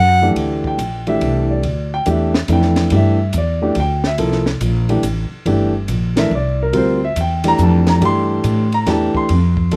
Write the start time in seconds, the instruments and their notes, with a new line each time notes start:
Already playing: upright bass F#2
0.00 soprano saxophone F#5
0.22 grand piano E3 A3 D4 G4
0.36 upright bass D2, ride
0.64 grand piano G5, kick
0.78 upright bass A#1, hi-hat pedal, ride
1.07 grand piano E3 A3 D4 G4 E5, ride
1.21 upright bass C2, ride
1.51 grand piano D5
1.63 upright bass D2, ride
1.94 grand piano G5
2.06 upright bass E2, grand piano E3 A3 D4 G4, hi-hat pedal, ride
2.10 grand piano E5
2.34 snare
2.48 upright bass F2, grand piano E3 A3 D4 E4, hi-hat pedal, ride
2.53 grand piano G5
2.62 snare
2.76 snare, ride
2.90 upright bass G2, grand piano E3 A3 D4 G4, ride
2.96 grand piano E5
3.33 upright bass E2, hi-hat pedal, ride
3.38 grand piano D5
3.62 grand piano E3 A3 D4 G4
3.75 upright bass D2, ride
3.80 grand piano G5
4.04 grand piano E5, snare
4.18 upright bass C2, grand piano F3 A#3 E4 A4, ride
4.32 snare
4.46 snare
4.61 upright bass A#1, hi-hat pedal, ride
4.89 grand piano E3 A3 D4 G4, ride
5.03 upright bass A1, hi-hat pedal, ride
5.31 muted upright bass stroke
5.46 upright bass G1, grand piano E3 A3 D4 G4, ride
5.88 upright bass A#1, hi-hat pedal, ride
6.16 grand piano E3 A3 D4 A#4 E5, snare, ride
6.31 upright bass C2
6.35 grand piano D5
6.63 grand piano A#4
6.73 upright bass D2, grand piano G3 C4 F4 A#4, ride
6.77 grand piano C5
7.05 grand piano E5
7.16 upright bass E2, hi-hat pedal, ride
7.21 grand piano G5
7.44 grand piano E3 A3 D4 G4, ride
7.48 grand piano A#5
7.58 upright bass F2, hi-hat pedal
7.63 grand piano A5
7.87 grand piano A#5, snare, ride
8.01 upright bass G2, grand piano E3 A3 D4 G4, ride
8.05 grand piano C6
8.44 upright bass A2, hi-hat pedal, ride
8.72 grand piano A#5, ride
8.86 upright bass E2, grand piano E3 A3 D4 G4 A5, snare, ride
9.15 grand piano C6, muted upright bass stroke, kick
9.29 upright bass F2, ride
9.57 kick
9.71 upright bass C#2, grand piano G3 C4 F4 A4, ride